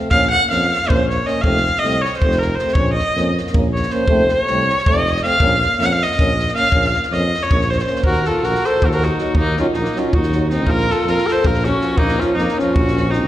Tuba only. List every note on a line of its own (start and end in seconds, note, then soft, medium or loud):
0.11 0.33 A#1 medium
0.51 0.73 F2 medium
0.89 1.19 A#1 medium
1.45 1.66 F1 loud
1.83 2.05 C2 medium
2.23 2.52 F1 medium
2.75 2.97 A#1 medium
3.16 3.37 F2 medium
3.53 3.83 A#1 medium
4.07 4.29 F1 medium
4.49 4.71 C2 medium
4.89 5.18 F1 medium
5.42 5.63 A#1 loud
5.80 6.01 F2 medium
6.20 6.49 A#1 medium
6.72 6.94 A#1 medium
7.11 7.33 F2 loud
7.51 7.80 A#1 medium
8.05 8.26 D#2 medium
8.43 8.55 A#1 medium
8.82 9.11 D#2 medium
9.34 9.56 D#2 medium
9.73 9.85 A#1 medium
10.14 10.68 D#2 medium
10.67 10.88 A#1 loud
11.04 11.17 F2 medium
11.44 11.73 A#1 loud
11.97 12.18 A#1 medium
12.35 12.48 F2 medium
12.75 13.28 A#1 loud